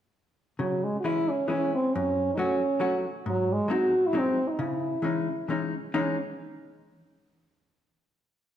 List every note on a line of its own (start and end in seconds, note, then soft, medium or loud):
0.59 0.93 C#3 medium
0.59 0.85 F#3 medium
0.84 0.99 G#3 medium
1.00 1.06 F#4 medium
1.04 1.28 E3 soft
1.04 1.29 G#3 medium
1.04 1.29 C#4 soft
1.04 1.31 E4 medium
1.04 1.29 E4 medium
1.30 1.49 C#4 medium
1.48 1.73 E3 soft
1.48 1.73 G#3 soft
1.48 1.73 C#4 soft
1.48 1.72 C#4 medium
1.48 1.74 E4 soft
1.74 1.95 C4 medium
1.94 2.28 F#2 medium
1.94 2.32 C#4 medium
2.34 2.61 F#3 medium
2.34 2.61 A3 medium
2.34 2.41 D#4 medium
2.39 2.62 C#4 soft
2.39 3.06 C#4 medium
2.39 2.62 F#4 medium
2.80 3.04 F#3 soft
2.80 3.04 A3 soft
2.80 3.04 C#4 soft
2.80 3.05 F#4 medium
3.26 3.59 G#2 medium
3.26 3.54 F#3 medium
3.53 3.74 G#3 medium
3.68 3.92 F#3 medium
3.68 3.93 G#3 soft
3.68 3.93 C4 soft
3.68 3.94 D#4 medium
3.72 4.08 F#4 medium
4.07 4.20 E4 medium
4.13 4.37 F#3 medium
4.13 4.37 G#3 soft
4.13 4.38 C4 soft
4.13 4.38 D#4 medium
4.18 4.49 C4 medium
4.47 4.63 D#4 medium
4.47 4.52 E4 medium
4.59 4.93 C#3 medium
4.59 5.50 E4 medium
5.02 5.27 E3 medium
5.02 5.27 G#3 soft
5.02 5.28 C#4 soft
5.02 5.28 D#4 soft
5.48 5.73 E3 soft
5.48 5.73 G#3 soft
5.48 5.73 C#4 soft
5.48 5.74 D#4 medium
5.94 6.16 E3 medium
5.94 6.16 G#3 medium
5.94 6.16 C#4 medium
5.94 6.17 C#4 medium
5.94 6.16 D#4 medium